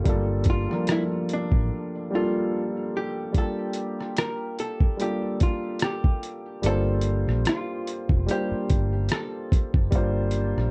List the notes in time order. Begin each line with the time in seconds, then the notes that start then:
Already playing: G3 A3 A#3 D4 F4 A4
0.04 G1 G3 A#3 D4 F4, kick, closed hi-hat
0.09 A4
0.44 kick, closed hi-hat
0.50 F4
0.68 F3 G3 A#3 D4, cross-stick
0.74 A#4
0.87 cross-stick, closed hi-hat
0.92 E4
1.29 closed hi-hat
1.33 D4
1.52 A1, kick
2.10 G3 A#3 D4 F4
2.15 F4 A4
2.97 G4
3.33 G3 A#3 D4 F4, kick, closed hi-hat
3.38 G4 A4
3.73 closed hi-hat
4.01 cross-stick
4.17 A#4, cross-stick, closed hi-hat
4.59 A4, closed hi-hat
4.80 kick
4.97 G3 A#3 D4 F4, closed hi-hat
5.01 G4 A4
5.40 F4, kick, closed hi-hat
5.79 cross-stick, closed hi-hat
5.84 G4
6.04 kick
6.23 closed hi-hat
6.62 G1 G3 A#3 D4 F4, closed hi-hat
6.66 A4 C5
7.01 closed hi-hat
7.28 A#1, cross-stick
7.45 F4, cross-stick, closed hi-hat
7.87 closed hi-hat
8.09 F1, kick
8.27 G3 A#3 D4, closed hi-hat
8.31 F4 G4 C5
8.51 muted fingered electric bass stroke
8.70 G1, kick, closed hi-hat
9.09 cross-stick, closed hi-hat
9.13 A4
9.52 kick, closed hi-hat
9.74 F#1, kick
9.91 G1 G3 A#3 D4 F4, kick, closed hi-hat
9.95 C5
10.31 closed hi-hat
10.57 A#1, cross-stick